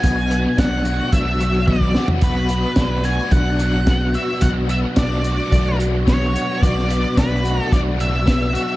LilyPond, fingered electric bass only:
\new Staff \with { instrumentName = "Fingered electric bass" } { \clef bass \time 4/4 \key b \minor \tempo 4 = 109 b,,4 b,,4 b,,2 | b,,4 b,,4 b,,2 | b,,4 b,,4 b,,2 | b,,4 b,,4 b,,2 | }